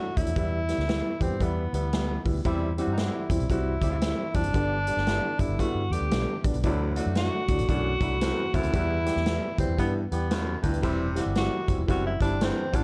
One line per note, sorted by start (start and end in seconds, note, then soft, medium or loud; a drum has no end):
0.00 0.18 F#4 loud
0.17 0.25 D2 medium
0.17 0.29 F#3 medium
0.17 0.30 A3 medium
0.17 0.30 D4 medium
0.17 1.24 E4 loud
0.17 0.30 E4 medium
0.17 kick medium
0.17 closed hi-hat medium
0.26 0.34 E2 medium
0.26 closed hi-hat medium
0.36 0.71 E2 loud
0.36 0.58 E3 medium
0.36 0.58 G3 medium
0.36 0.58 B3 medium
0.36 0.58 E4 loud
0.36 kick loud
0.36 closed hi-hat medium
0.69 0.82 E3 medium
0.69 0.82 G3 medium
0.69 0.82 B3 medium
0.69 0.82 E4 medium
0.69 snare soft
0.69 closed hi-hat medium
0.78 1.00 D2 medium
0.78 snare soft
0.88 1.09 E3 medium
0.88 1.10 G3 medium
0.88 1.10 B3 medium
0.88 1.10 E4 medium
0.88 snare medium
0.88 closed hi-hat medium
1.20 1.29 E2 medium
1.20 1.33 E3 medium
1.20 1.34 G3 medium
1.20 1.34 B3 medium
1.20 1.45 C4 medium
1.20 1.34 G4 medium
1.20 kick medium
1.20 closed hi-hat medium
1.31 1.39 G2 medium
1.40 1.67 E2 medium
1.40 1.62 E3 medium
1.40 1.62 G3 medium
1.40 1.62 B3 medium
1.40 1.74 B3 medium
1.40 1.62 E4 loud
1.40 kick medium
1.40 closed hi-hat medium
1.73 2.16 D2 medium
1.73 1.86 E3 medium
1.73 1.87 G3 medium
1.73 2.22 B3 medium
1.73 1.87 B3 medium
1.73 1.87 E4 medium
1.73 closed hi-hat medium
1.93 2.14 E3 medium
1.93 2.15 G3 medium
1.93 2.15 B3 medium
1.93 2.15 E4 medium
1.93 snare loud
1.93 closed hi-hat medium
2.25 2.42 D2 medium
2.25 2.38 E3 medium
2.25 2.38 G3 medium
2.25 2.39 B3 medium
2.25 2.39 E4 medium
2.25 kick medium
2.25 open hi-hat soft
2.45 2.80 E2 medium
2.45 2.71 C3 loud
2.45 2.66 E3 loud
2.45 2.71 G3 loud
2.45 2.67 G3 loud
2.45 2.67 C4 medium
2.45 2.71 E4 loud
2.45 2.67 E4 loud
2.45 kick loud
2.45 closed hi-hat medium
2.77 3.27 C3 medium
2.77 2.91 E3 medium
2.77 3.27 G3 medium
2.77 2.91 G3 medium
2.77 2.91 C4 medium
2.77 2.91 E4 medium
2.77 3.27 F#4 medium
2.77 closed hi-hat medium
2.87 3.09 G2 medium
2.93 3.01 D#4 medium
2.97 3.19 E3 medium
2.97 3.19 G3 medium
2.97 3.19 C4 medium
2.97 3.19 E4 medium
2.97 3.50 E4 medium
2.97 snare medium
2.97 closed hi-hat medium
3.30 3.38 E2 medium
3.30 3.43 E3 medium
3.30 3.43 G3 medium
3.30 3.44 C4 medium
3.30 3.44 E4 medium
3.30 kick medium
3.30 closed hi-hat medium
3.40 3.48 B1 medium
3.40 closed hi-hat soft
3.50 3.77 C2 medium
3.50 3.71 E3 medium
3.50 3.71 G3 medium
3.50 3.72 C4 medium
3.50 4.37 E4 medium
3.50 3.72 F#4 loud
3.50 kick medium
3.50 closed hi-hat medium
3.81 4.12 D2 medium
3.81 3.97 C3 medium
3.81 3.95 E3 medium
3.81 3.98 G3 medium
3.81 3.96 G3 medium
3.81 3.96 C4 medium
3.81 3.97 E4 medium
3.81 3.96 E4 medium
3.81 kick medium
3.81 closed hi-hat medium
4.01 4.23 E3 medium
4.01 4.23 G3 medium
4.01 4.24 C4 medium
4.01 4.24 E4 medium
4.01 snare loud
4.01 closed hi-hat medium
4.34 4.43 E2 medium
4.34 4.48 E3 medium
4.34 4.48 G3 medium
4.34 4.48 C4 medium
4.34 5.42 D4 loud
4.34 4.48 E4 medium
4.34 kick medium
4.34 closed hi-hat medium
4.44 4.53 F#1 medium
4.44 closed hi-hat medium
4.53 4.90 G1 loud
4.53 4.75 D3 medium
4.53 4.75 G3 medium
4.53 4.76 B3 medium
4.53 4.76 D4 loud
4.53 kick medium
4.53 closed hi-hat medium
4.87 5.00 D3 medium
4.87 5.00 G3 medium
4.87 5.01 B3 medium
4.87 5.01 D4 medium
4.87 closed hi-hat medium
4.97 5.19 G1 medium
4.97 snare soft
5.07 5.29 D3 medium
5.07 5.29 G3 medium
5.07 5.29 B3 medium
5.07 5.29 E4 medium
5.07 snare medium
5.07 closed hi-hat medium
5.39 5.48 F#1 medium
5.39 5.53 D3 medium
5.39 5.53 G3 medium
5.39 5.53 B3 medium
5.39 5.53 D4 medium
5.39 5.62 E4 medium
5.39 kick medium
5.39 closed hi-hat medium
5.49 5.57 G1 medium
5.59 5.80 D3 loud
5.59 5.80 G3 medium
5.59 5.81 B3 medium
5.59 5.81 E4 loud
5.59 5.94 F#4 loud
5.59 kick medium
5.59 closed hi-hat medium
5.75 5.88 G2 medium
5.90 5.99 E2 medium
5.90 6.05 D3 medium
5.90 6.05 G3 medium
5.90 6.05 B3 medium
5.90 6.06 D4 medium
5.90 6.44 G4 medium
5.90 closed hi-hat medium
6.01 6.09 D2 medium
6.11 6.25 B1 medium
6.11 6.33 D3 medium
6.11 6.33 G3 medium
6.11 6.33 B3 medium
6.11 6.33 D4 medium
6.11 snare loud
6.11 closed hi-hat medium
6.44 6.53 A1 medium
6.44 6.57 D3 medium
6.44 6.57 G3 medium
6.44 6.57 B3 medium
6.44 6.58 D4 medium
6.44 kick medium
6.44 closed hi-hat medium
6.54 6.62 B1 medium
6.54 closed hi-hat soft
6.63 6.99 D2 loud
6.63 7.04 D2 medium
6.63 6.90 A2 loud
6.63 6.85 E3 loud
6.63 6.90 F#3 loud
6.63 6.85 F#3 loud
6.63 6.86 A3 medium
6.63 6.86 D4 loud
6.63 6.90 E4 loud
6.63 kick medium
6.63 closed hi-hat medium
6.95 7.45 D3 medium
6.95 7.10 E3 medium
6.95 7.10 F#3 medium
6.95 7.45 A3 medium
6.95 7.10 A3 medium
6.95 7.10 D4 medium
6.95 7.45 F#4 medium
6.95 closed hi-hat medium
7.06 7.28 F#2 medium
7.15 7.38 E3 medium
7.15 7.38 F#3 medium
7.15 7.38 A3 medium
7.15 7.39 D4 medium
7.15 7.65 F#4 loud
7.15 snare medium
7.15 closed hi-hat medium
7.48 7.57 D2 medium
7.48 7.62 E3 medium
7.48 7.63 F#3 medium
7.48 7.63 A3 medium
7.48 7.63 D4 medium
7.48 kick medium
7.48 closed hi-hat medium
7.59 7.67 A1 medium
7.59 closed hi-hat soft
7.68 7.96 B1 loud
7.68 7.95 F#2 medium
7.68 7.90 E3 medium
7.68 7.90 F#3 medium
7.68 7.90 A3 medium
7.68 7.90 D4 loud
7.68 8.56 F#4 loud
7.68 kick medium
7.68 closed hi-hat medium
8.00 8.31 C2 medium
8.00 8.17 A2 medium
8.00 8.14 E3 medium
8.00 8.17 F#3 medium
8.00 8.15 F#3 medium
8.00 8.15 A3 medium
8.00 8.15 D4 medium
8.00 8.17 E4 medium
8.00 kick medium
8.00 closed hi-hat medium
8.21 8.47 E2 medium
8.21 8.43 E3 medium
8.21 8.43 F#3 medium
8.21 8.43 A3 medium
8.21 8.43 C4 medium
8.21 snare loud
8.21 closed hi-hat medium
8.53 8.62 D2 medium
8.53 8.70 F#2 medium
8.53 8.67 E3 medium
8.53 8.67 F#3 medium
8.53 8.67 A3 medium
8.53 8.67 C4 medium
8.53 9.59 E4 loud
8.53 kick medium
8.53 closed hi-hat medium
8.63 8.72 D2 medium
8.63 closed hi-hat soft
8.72 9.09 E2 medium
8.72 9.14 E2 medium
8.72 8.94 E3 medium
8.72 8.94 G3 medium
8.72 8.95 B3 medium
8.72 8.95 E4 loud
8.72 kick loud
8.72 closed hi-hat medium
9.05 9.19 E3 medium
9.05 9.19 G3 medium
9.05 9.19 B3 medium
9.05 9.19 G4 medium
9.05 snare soft
9.05 closed hi-hat medium
9.16 9.38 E2 medium
9.16 snare soft
9.26 9.47 E3 medium
9.26 9.48 G3 medium
9.26 9.48 B3 medium
9.26 9.48 E4 medium
9.26 snare loud
9.26 closed hi-hat medium
9.58 9.67 D2 medium
9.58 9.71 E3 medium
9.58 9.72 G3 medium
9.58 9.72 B3 medium
9.58 9.78 C4 medium
9.58 9.72 E4 medium
9.58 kick medium
9.58 closed hi-hat medium
9.69 9.77 E2 medium
9.78 10.04 G2 medium
9.78 10.05 G2 loud
9.78 10.00 E3 medium
9.78 10.00 G3 medium
9.78 10.00 B3 medium
9.78 9.94 B3 medium
9.78 10.00 E4 loud
9.78 kick medium
9.78 closed hi-hat medium
10.11 10.55 E2 medium
10.11 10.24 E3 medium
10.11 10.25 G3 medium
10.11 10.25 B3 medium
10.11 10.60 B3 medium
10.11 10.25 G4 medium
10.11 closed hi-hat medium
10.30 10.57 F#2 medium
10.30 10.52 E3 medium
10.30 10.52 G3 medium
10.30 10.53 B3 medium
10.30 10.53 E4 medium
10.30 snare loud
10.30 closed hi-hat medium
10.62 10.80 D2 medium
10.62 10.79 G2 medium
10.62 10.76 E3 medium
10.62 10.76 G3 medium
10.62 10.77 B3 medium
10.62 10.77 E4 medium
10.62 kick medium
10.62 closed hi-hat medium
10.73 closed hi-hat medium
10.82 11.19 E1 loud
10.82 11.09 C3 loud
10.82 11.23 C3 medium
10.82 11.04 E3 loud
10.82 11.09 G3 loud
10.82 11.04 G3 loud
10.82 11.05 C4 loud
10.82 11.09 E4 loud
10.82 11.05 E4 loud
10.82 kick medium
10.82 closed hi-hat medium
11.15 11.65 C3 medium
11.15 11.29 E3 medium
11.15 11.29 G3 medium
11.15 11.65 G3 medium
11.15 11.29 C4 medium
11.15 11.29 E4 loud
11.15 11.65 F#4 medium
11.15 snare soft
11.15 closed hi-hat medium
11.26 11.48 G1 medium
11.35 11.57 E3 medium
11.35 11.57 G3 medium
11.35 11.57 C4 medium
11.35 11.57 E4 medium
11.35 11.86 F#4 loud
11.35 snare medium
11.35 closed hi-hat medium
11.67 11.77 F#1 medium
11.67 11.81 E3 medium
11.67 11.81 G3 medium
11.67 11.82 C4 medium
11.67 11.82 E4 medium
11.67 kick medium
11.67 closed hi-hat medium
11.79 11.87 E1 medium
11.87 12.15 F#1 medium
11.87 12.14 F#2 medium
11.87 12.09 E3 loud
11.87 12.09 G3 medium
11.87 12.10 C4 medium
11.87 12.10 E4 loud
11.87 12.05 F#4 medium
11.87 kick medium
11.87 closed hi-hat medium
12.06 12.21 E4 medium
12.21 12.51 G1 medium
12.21 12.37 C3 medium
12.21 12.34 E3 medium
12.21 12.37 G3 medium
12.21 12.34 G3 medium
12.21 12.34 C4 medium
12.21 12.45 D4 loud
12.21 12.37 E4 medium
12.21 12.35 E4 medium
12.21 kick medium
12.21 closed hi-hat medium
12.40 12.67 E2 medium
12.40 12.62 E3 medium
12.40 12.62 G3 medium
12.40 12.62 C4 medium
12.40 12.77 C4 medium
12.40 12.63 D4 medium
12.40 snare loud
12.40 closed hi-hat medium
12.72 12.82 A1 medium
12.72 12.84 F#2 medium
12.72 12.84 E3 medium
12.72 12.84 G3 medium
12.72 12.84 C4 medium
12.72 12.84 D4 loud
12.72 12.84 E4 medium
12.72 kick medium
12.72 closed hi-hat medium